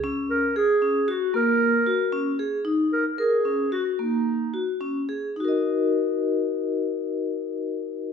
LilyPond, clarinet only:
\new Staff \with { instrumentName = "Clarinet" } { \time 5/4 \key ees \minor \tempo 4 = 111 r8 bes'8 aes'4 ges'8 bes'2 r8 | r8 bes'8 aes'4 ges'8 ees'4. r4 | r1 r4 | }